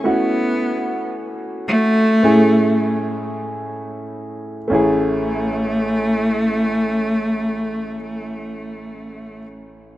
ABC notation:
X:1
M:4/4
L:1/8
Q:1/4=45
K:A
V:1 name="Grand piano"
[A,CEF]4 [A,CEG]4 | [A,CEG]8 |]
V:2 name="Grand piano" clef=bass
z4 A,,3 z | A,,,8 |]
V:3 name="Cello"
B,2 z A,3 z2 | A,8 |]